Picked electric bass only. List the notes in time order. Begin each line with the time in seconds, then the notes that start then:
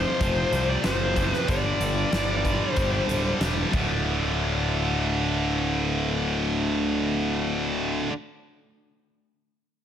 0.20 F1
0.52 C2
0.84 F#1
1.48 G1
1.80 G1
2.13 G1
2.77 G1
3.09 D1
3.41 E1
3.73 D1